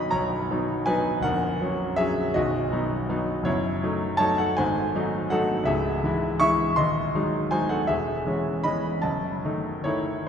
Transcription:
grand piano
Already playing: B0 B1 F#3 B3 D#4 F#4 D#5 B5
0.11 B0 B1 C#5 A#5
0.51 F#3 B3 D#4
0.86 F#3 B3 D#4 B4 G#5
1.20 A#0 F#5
1.24 A#1 A#4
1.62 F#3 C#4
1.96 F#3 C#4 G#4 E5
2.34 B0 B1 F#4 D#5
2.72 F#3 B3 D#4
3.09 F#3 B3 D#4
3.43 F#1 F#2 E4 C#5
3.83 F#3 A3 D#4
4.17 F#3 A3 D#4 C#5 A5
4.38 A4 F#5
4.57 G#1 G#2 C5 G#5
4.95 F#3 A3 D#4
5.30 F#3 A3 D#4 A4 F#5
5.63 C#1 C#2 G#4 E5
6.04 E3 G#3 E4
6.40 E3 G#3 E4 E5 C#6
6.76 D#1 D#2 D#5 C6
7.15 F#3 G#3 D#4
7.51 F#3 G#3 D#4 C5 G#5
7.69 A4 F#5
7.87 E1 E2 G#4 E5
8.27 E3 G#3 C#4
8.64 E3 G#3 C#4 D#5 B5
9.02 F#1 F#2 D#5 A5
9.44 D#3 A3 D#4
9.84 D#3 A3 D#4 E4 C#5

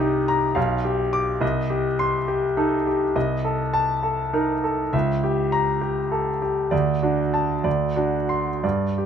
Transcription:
grand piano
Already playing: C2 D#5
0.00 D#4 G4
0.28 A#5
0.55 B1 F5
0.84 G4
1.13 D6
1.41 C2 D#5
1.70 G4
1.99 C6
2.28 G4
2.57 D#4 A4
2.87 G4
3.16 C2 D#5
3.45 A4
3.74 A5
4.03 A4
4.33 D#4 A#4
4.64 A4
4.93 C#2 E5
5.23 G4
5.52 A#5
5.81 G4
6.12 A4
6.42 G4
6.71 D2 D5
7.03 D4 F#4
7.34 A5
7.64 D2 D5
7.96 D4 F#4
8.29 C6
8.64 G2 D5
8.98 G4

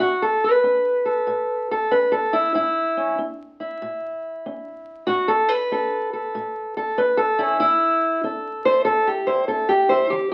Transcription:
steel-string acoustic guitar
0.00 A2 F#4
0.22 A4
0.44 B4
0.63 C#4
1.05 A4
1.27 A2
1.71 A4
1.91 C#4 B4
2.12 A4
2.33 E4
2.54 A2 E4
2.97 C#4
3.18 C#4
3.60 E4
3.82 A2
4.46 C#4
5.07 A2 F#4
5.28 A4
5.49 B4
5.72 C#4 A4
6.13 A4
6.35 A2
6.77 A4
6.98 C#4 B4
7.17 A4
7.39 C#4 E4
7.60 A2 E4
8.24 C#4 A4
8.65 E4 C5
8.85 A2 A4
9.07 G4
9.27 E4 C5
9.48 C#4 A4
9.69 G4
9.89 E4 C5
10.10 E3 G4

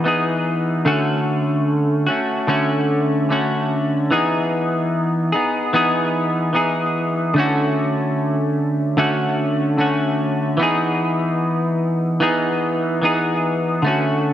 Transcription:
clean electric guitar
0.04 E3 B3 D#4 G#4
0.85 D3 A3 C#4 F#4
2.07 A3 C#4 F#4
2.47 D3 A3 C#4 F#4
3.29 D3 A3 C#4 F#4
4.11 E3 B3 D#4 G#4
5.32 B3 D#4 G#4
5.73 E3 B3 D#4 G#4
6.53 E3 B3 D#4 G#4
7.34 D3 A3
7.38 C#4 F#4
8.97 D3 A3 C#4 F#4
9.78 D3 A3 C#4 F#4
10.57 E3 B3 D#4
10.63 G#4
12.20 E3 B3 D#4 G#4
13.02 E3 B3 D#4 G#4
13.82 D3 A3 C#4
13.88 F#4

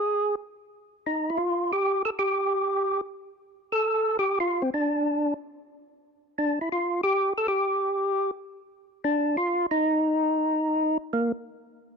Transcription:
tonewheel organ
Already playing: G#4
1.06 D#4
1.30 E4
1.37 F4
1.73 G4
2.05 A4
2.19 G4
3.72 A4
4.19 G4
4.40 F4
4.62 C4
4.74 D4
6.38 D4
6.61 E4
6.72 F4
7.03 G4
7.38 A4
7.48 G4
9.04 D4
9.37 F4
9.71 D#4
11.13 A#3

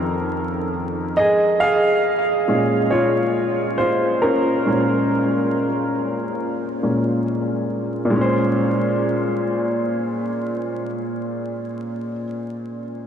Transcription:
upright piano
Already playing: F2 D#3 C#4 A4 A#4
1.17 G#4 D#5
1.60 G#4 F5
2.48 A#2 G#3 C#4
2.91 F4 C#5
3.78 F4 C5
4.22 C#4 A#4
4.66 A#2 G#3 C#4
6.83 A#2 G#3 C#4
8.05 A#2
8.10 G#3
8.16 C#4
8.21 C5

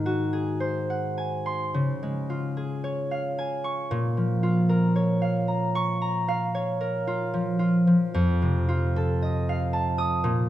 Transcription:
harp
Already playing: G#2 D#3 G#3 G#4 G#5
0.06 F#4
0.33 G#4
0.60 C5
0.90 F#5
1.18 G#5
1.46 C6
1.74 C#3
2.03 G#3
2.30 F4
2.57 G#4
2.84 C#5
3.11 F5
3.38 G#5
3.64 C#6
3.91 A#2
4.17 F3
4.43 F4
4.69 A#4
4.96 C#5
5.22 F5
5.48 A#5
5.75 C#6
6.02 A#5
6.28 F5
6.55 C#5
6.81 A#4
7.07 F4
7.34 F3
7.59 F4
7.87 F3
8.14 F2
8.42 C3
8.69 F4
8.96 A4
9.22 D#5
9.49 F5
9.73 A5
9.98 D#6
10.24 A#2

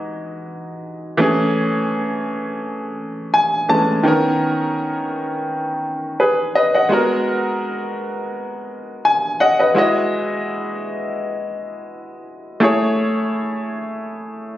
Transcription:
grand piano
Already playing: E3 G#3 D#4 F#4
1.17 E3 A3 C#4
1.22 G#4
3.34 G#5
3.69 E3 G#3 A3 C#4 A5
4.03 D#3 B3 C#4
4.08 A#4
6.20 G#4 B4
6.55 B4 D#5
6.75 D#5 F#5
6.89 G#3 B3 F#4
6.93 A#4
9.05 G#5
9.40 D#5 F#5
9.60 B4 D#5
9.74 G#3 E4 F#4 D#5
12.60 A3 E4 G#4 C#5

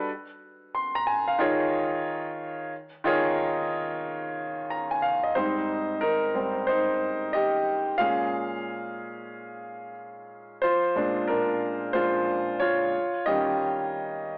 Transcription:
grand piano
0.75 C6
0.95 A#5
1.07 G#5
1.28 F5
1.39 D#3 D#4 F4 G#4 C#5
3.04 D#3 D#4 F4 G#4 C#5
4.70 A#5
4.91 G#5
5.02 F5
5.23 D#5
5.35 G#2 G3 C4 D#4 C5
6.01 D#4 A#4
6.34 G#2 G3 C4
6.67 D#4 C5
7.33 G4 D#5
7.98 A#2 G#3 C#4 G#4 F5
10.62 F4 C5
10.96 A#2 G#3 D4
11.28 D4 A#4
11.93 A#2 G#3 D4 F4 C5
12.60 F4 C#5
13.26 D#3 G3 C#4 G4 D#5

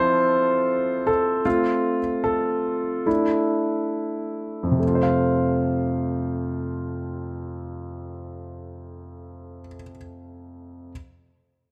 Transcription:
grand piano
Already playing: F3 C4 E4 F4 A4 C5
1.07 A4
1.45 A3 C4 F4
2.24 A4
3.06 A3 D4 E4
4.63 F2
4.71 C3
4.79 A3
4.87 F4
4.95 C5
5.03 F5

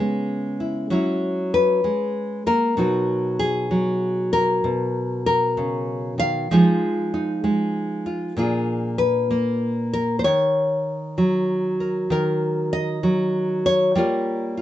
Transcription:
nylon-string guitar
Already playing: C#3 G#3 B3 E4 C#5
0.60 E4
0.90 F#3 C#4 E4
1.54 B4
1.84 G#3
2.47 A#3 A#4
2.77 B2 F#3 D#4 F#4
3.39 G#4
3.71 F#3
4.33 A#4
4.64 B2
5.26 A#4
5.57 C#3
6.18 D#3 F5
6.51 F3 G#3 D#4 F4 G#4
7.14 D#4
7.44 G#3
8.06 F4
8.37 A#2 A#3 D4 F4 G#4
8.98 B4
9.31 A#3
9.93 A#4
10.19 C5
10.24 D#3 C#5
11.18 F#3
11.80 A#4
12.10 D#3 A#4
12.73 D#5
13.03 F#3
13.66 C#5
13.95 G3 A#3 F4 A#4
14.57 F4

